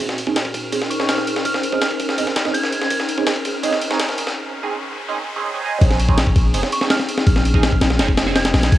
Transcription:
Already playing: C4 C#4 D#4 G#4
0.00 C#4 D#4 G#4 A#4 C5 F6, riser
0.09 snare
0.18 ride
0.27 C4 C#4 D#4 G#4, kick
0.36 snare, ride
0.45 kick
0.54 kick, ride
0.72 C4 C#4 D#4 G#4, ride
0.82 snare
0.90 C#6, ride
1.00 C4 C#4 D#4 G#4 C#6, snare
1.09 F6, snare, ride
1.18 snare
1.27 ride
1.36 snare
1.45 F6, kick, ride
1.54 snare
1.63 ride
1.72 C4 C#4 D#4 G#4, kick
1.82 snare, ride
1.91 kick
2.00 kick, ride
2.09 snare
2.18 C4 C#4 D#4 G#4, ride
2.27 snare
2.36 snare, ride
2.45 C4 C#4 D#4 G#4, snare
2.54 G#6, ride
2.63 snare
2.72 ride
2.81 snare
2.90 kick, ride
3.00 snare
3.09 ride
3.18 C4 C#4 D#4 G#4, kick
3.27 snare, ride
3.36 kick
3.45 kick, ride
3.63 C4 C#4 D#4 G#4, ride
3.72 snare
3.81 ride
3.90 C4 C#4 D#4 G#4, snare
3.99 snare, ride
4.09 snare
4.18 ride
4.27 snare
4.63 C4 C#4 D#4 G#4
5.08 C4 C#4 D#4 G#4
5.36 C4 C#4 D#4 G#4
5.54 C4 C#4 D#4 G#4
5.63 C4 C#4 D#4 G#4
5.81 A#1 C4 C#4 D#4 G#4, kick, ride
5.91 snare
6.00 ride
6.09 C4 C#4 D#4 G#4, kick
6.18 snare, ride
6.27 kick
6.36 A#1, kick, ride
6.54 F1 C4 C#4 D#4 G#4, ride
6.63 snare
6.72 C#6, ride
6.81 C4 C#4 D#4 G#4, snare
6.90 F6, snare, ride
6.99 snare
7.09 ride
7.18 snare
7.27 A#1 F6, kick, ride
7.36 snare
7.45 ride
7.54 C4 C#4 D#4 G#4, kick
7.63 snare, ride
7.72 kick
7.81 A#1, snare, ride
7.90 snare
7.99 F1 C4 C#4 D#4 G#4, snare, ride
8.08 kick
8.17 snare, ride
8.27 C4 C#4 D#4 G#4, snare
8.36 G#6, snare, ride
8.45 snare, ride
8.54 A#1, snare, ride
8.63 snare, ride
8.72 A#1 A#4, kick, ride

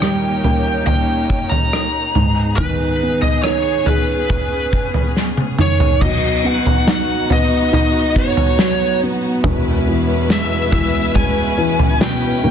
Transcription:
Already playing: D#2 A#2 D#3 A#3 C#4 D#4 G4 C#5 G5
0.02 G3, cross-stick
0.44 A#3, floor tom
0.87 G5, floor tom
1.30 kick
1.49 A#5, floor tom
1.73 cross-stick
2.15 G#2 B3 G#4, floor tom
2.57 D#3 B4, kick, floor tom
3.03 B3
3.22 D#5, floor tom
3.43 D#4 C#5, cross-stick
3.86 C#4 G#4 B4, floor tom
4.30 kick, floor tom
4.73 kick
4.94 floor tom
5.16 snare
5.37 high tom
5.59 D#3 C#5, mid tom
5.80 floor tom
6.01 B1 B2 B3 D#4 F#4 D#5, kick, floor tom, crash
6.44 B3 F#5
6.66 floor tom
6.87 D#4 F#5, snare
7.30 B3 D#5, floor tom
7.73 D#4 D#5, floor tom
8.16 B3 C#5, kick
8.37 floor tom
8.59 F#3, snare
9.03 B3
9.44 E1 E2 G#3 C#4 E4 B4, kick, floor tom
9.89 E3
10.30 G#3 E5, snare
10.72 E3 E5, kick, floor tom
11.15 G#3 G#5, kick, floor tom
11.58 E3
11.79 floor tom
12.01 B2 G5, snare
12.43 D#1 D#2 G3 A#3 D#4 A#4

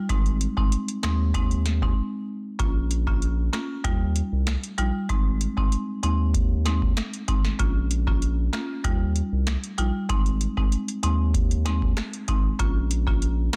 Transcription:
0.09 G#1 G#3 C4 D#4, kick, closed hi-hat
0.26 closed hi-hat
0.41 closed hi-hat
0.57 G#1 G#3 C4 D#4, kick
0.72 closed hi-hat
0.88 closed hi-hat
1.03 D#2 G#3 C4 D#4, finger snap, snare, closed hi-hat
1.34 G#3 C4 D#4, kick, closed hi-hat
1.51 closed hi-hat
1.66 snare, closed hi-hat
1.82 G#3 C4 D#4, kick
2.59 A#1 A#3 C#4 F4, kick, closed hi-hat
2.91 closed hi-hat
3.07 A#3 C#4 F4, kick
3.22 closed hi-hat
3.53 A#3 C#4 F4, finger snap, snare, closed hi-hat
3.84 D#2 G3 D#4 F4, kick, closed hi-hat
4.16 closed hi-hat
4.32 C2
4.47 finger snap, snare, closed hi-hat
4.64 closed hi-hat
4.78 A#1 G3 D#4 F4, closed hi-hat
5.09 G#1 G#3 C4 D#4, kick, closed hi-hat
5.41 closed hi-hat
5.57 G#1 G#3 C4 D#4, kick
5.72 closed hi-hat
6.03 D#2 G#3 C4 D#4, closed hi-hat
6.34 kick, closed hi-hat
6.65 G#3 C4 D#4, snare, closed hi-hat
6.82 kick
6.97 finger snap, snare, closed hi-hat
7.13 closed hi-hat
7.28 G#1 G#3 C4 D#4, kick, closed hi-hat
7.45 snare
7.59 A#1 A#3 C#4 F4, kick, closed hi-hat
7.91 closed hi-hat
8.07 A#3 C#4 F4, kick
8.22 closed hi-hat
8.53 A#3 C#4 F4, finger snap, snare, closed hi-hat
8.84 D#2 G3 D#4 F4, kick, closed hi-hat
9.16 closed hi-hat
9.32 C2
9.47 finger snap, snare, closed hi-hat
9.64 closed hi-hat
9.78 A#1 G3 D#4 F4, closed hi-hat
10.09 G#1 G#3 C4 D#4, kick, closed hi-hat
10.26 closed hi-hat
10.41 closed hi-hat
10.57 G#1 G#3 C4 D#4, kick
10.72 closed hi-hat
10.88 closed hi-hat
11.03 D#2 G#3 C4 D#4, closed hi-hat
11.34 kick, closed hi-hat
11.51 closed hi-hat
11.65 G#3 C4 D#4, snare, closed hi-hat
11.82 kick
11.97 finger snap, cross-stick, snare, closed hi-hat
12.13 closed hi-hat
12.28 G#1 G#3 C4 D#4, kick, closed hi-hat
12.59 A#1 A#3 C#4 F4, kick, closed hi-hat
12.91 closed hi-hat
13.07 A#3 C#4 F4, kick
13.22 closed hi-hat
13.53 A#3 C#4, closed hi-hat

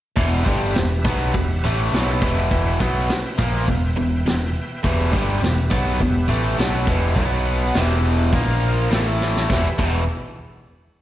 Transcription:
0.16 E1 E2 B2 E3 G#4 C5 F5, kick, open hi-hat
0.36 G4 B4 E5
0.45 G1 G2 D3 G3, kick
0.75 E1 E2 B2, snare, open hi-hat
1.05 B1 B2 F#3 B3, kick
1.34 E1 E2 B2, kick, open hi-hat
1.64 A1 A2 E3 A3
1.92 B1 B2 F#3 B3, snare, open hi-hat
2.22 E1 E2 B2 E3, kick
2.51 B4 E5 G5, kick, open hi-hat
2.80 B1 B2 F#3 B3, kick
3.09 muted overdriven electric guitar stroke, muted picked electric bass stroke, snare, open hi-hat
3.38 A#1 A#2 F3 A#3, kick
3.67 E1 E2 B2, kick, open hi-hat
3.97 E1 E2 B2
4.26 E1 E2 B2, snare, open hi-hat
4.84 E1 E2 B2 E3 G4 B4 E5, kick, open hi-hat
5.12 G1 G2 D3 G3, kick
5.41 E1 E2 B2, snare, open hi-hat
5.70 B1 B2 F#3 B3, kick
6.00 E1 E2 B2, kick, open hi-hat
6.28 A1 A2 E3 A3
6.58 B1 B2 F#3 B3, snare, open hi-hat
6.87 E1 E2 B2 E3, kick
7.16 B1 B2 F#3 B3 F#4 B4 F#5, kick, open hi-hat
7.74 E1 E2 B2 E3 G4 B4 E5, snare, open hi-hat
8.33 A#1 A#2 F3 A#3 F4 A#4 F5, kick, open hi-hat
8.90 A1 A2 E3 A3 E4 A4 E5, snare, open hi-hat
9.21 snare
9.36 snare
9.49 E1 E2 B2 E3 G4 B4 E5, kick, snare
9.78 E1 E2 B2 E3, kick, crash

